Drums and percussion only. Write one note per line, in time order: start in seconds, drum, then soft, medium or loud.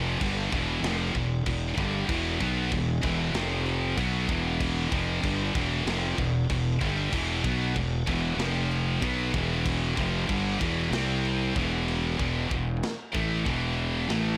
0.21 kick loud
0.21 crash medium
0.52 kick loud
0.52 crash medium
0.84 snare loud
0.84 crash loud
1.15 kick medium
1.15 crash medium
1.46 kick medium
1.46 crash medium
1.77 kick loud
1.77 crash medium
2.09 kick loud
2.09 crash loud
2.40 kick loud
2.40 crash medium
2.72 kick medium
2.72 crash medium
3.03 kick loud
3.03 crash medium
3.34 snare loud
3.34 crash medium
3.66 crash medium
3.97 kick loud
3.97 crash medium
4.28 kick loud
4.28 crash medium
4.60 kick loud
4.60 crash medium
4.92 kick loud
4.92 crash medium
5.24 kick medium
5.24 crash medium
5.55 kick loud
5.55 crash medium
5.87 snare loud
5.87 crash medium
6.18 kick medium
6.18 crash medium
6.50 kick medium
6.50 crash medium
6.81 kick loud
6.81 crash medium
7.13 kick loud
7.13 crash loud
7.44 kick loud
7.44 crash medium
7.76 kick medium
7.76 crash medium
8.07 kick loud
8.07 crash medium
8.39 snare loud
8.39 crash medium
8.71 crash medium
9.02 kick loud
9.02 crash medium
9.34 kick loud
9.34 crash medium
9.66 kick loud
9.66 crash medium
9.97 kick loud
9.97 crash medium
10.29 kick loud
10.29 crash medium
10.61 kick loud
10.61 crash medium
10.93 snare loud
10.93 crash medium
11.25 crash medium
11.56 kick loud
11.56 crash medium
11.88 crash medium
12.19 kick loud
12.19 china medium
12.51 kick loud
12.83 snare loud
12.83 china medium
13.15 kick loud
13.46 kick loud
13.46 china medium
14.09 snare loud
14.09 china medium